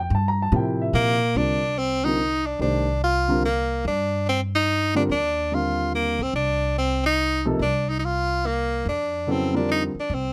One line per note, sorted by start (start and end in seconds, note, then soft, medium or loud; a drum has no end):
0.00 0.12 G5 medium
0.10 0.51 G2 medium
0.15 0.26 A5 medium
0.28 0.40 A#5 medium
0.42 0.54 A5 medium
0.52 0.93 A2 medium
0.52 1.15 C3 medium
0.52 1.16 F3 medium
0.52 1.16 E4 medium
0.52 1.16 A#4 medium
0.56 0.80 G5 medium
0.82 1.26 E5 medium
0.93 1.34 A#2 medium
0.93 1.39 A#3 loud
1.35 2.56 C2 medium
1.35 1.60 D3 soft
1.35 1.59 G3 soft
1.35 1.60 C4 soft
1.35 1.80 D4 medium
1.35 1.60 F4 soft
1.35 1.60 A#4 soft
1.78 2.06 C4 medium
2.04 2.17 D3 medium
2.04 2.18 G3 medium
2.04 2.18 C4 medium
2.04 2.48 D#4 medium
2.04 2.18 F4 medium
2.04 2.18 A#4 medium
2.46 2.61 D4 medium
2.59 3.81 C2 medium
2.59 2.84 D#3 medium
2.59 2.85 A3 soft
2.59 2.85 D4 soft
2.59 3.00 D4 medium
2.59 2.85 G4 soft
2.59 2.85 C5 medium
3.04 3.42 F4 loud
3.28 3.42 D3 medium
3.28 3.42 G3 medium
3.28 3.42 C4 medium
3.28 3.43 F4 medium
3.28 3.43 A#4 medium
3.45 3.83 A#3 medium
3.85 5.06 G2 medium
3.85 4.25 D4 medium
4.29 4.41 C4 medium
4.55 4.93 D#4 medium
4.95 5.08 D3 medium
4.95 5.09 G3 medium
4.95 5.09 C4 medium
4.95 5.03 D4 medium
4.95 5.09 F4 medium
4.95 5.09 A#4 medium
5.09 6.16 D#2 medium
5.09 5.56 D4 medium
5.52 6.15 D3 soft
5.52 6.15 G3 soft
5.52 6.15 C4 soft
5.52 6.15 F4 soft
5.52 5.94 F4 medium
5.52 6.16 A#4 soft
5.95 6.24 A#3 medium
6.19 6.33 C#2 medium
6.19 6.35 C4 medium
6.33 7.55 C2 medium
6.33 6.74 D4 medium
6.78 7.02 C4 medium
7.06 7.44 D#4 medium
7.45 7.59 C3 medium
7.45 7.59 F3 medium
7.45 7.59 A#3 medium
7.45 7.59 D#4 medium
7.45 7.59 A4 medium
7.59 8.81 C2 medium
7.59 7.91 D4 medium
7.89 7.98 D#4 medium
7.99 8.06 D#4 medium
8.05 8.48 F4 medium
8.46 8.87 A#3 medium
8.85 9.92 F2 medium
8.85 9.33 D4 medium
9.27 9.51 C#3 medium
9.27 9.51 F#3 medium
9.27 9.51 B3 medium
9.27 9.52 E4 medium
9.27 9.52 A4 medium
9.31 9.56 C4 medium
9.54 9.90 D3 medium
9.54 9.90 G3 medium
9.54 9.90 C4 medium
9.54 9.69 D4 medium
9.54 9.91 F4 soft
9.54 9.90 A#4 medium
9.72 9.83 D#4 medium
9.95 muted upright bass stroke soft
10.00 10.15 D4 medium
10.10 10.33 C2 medium
10.14 10.33 C4 medium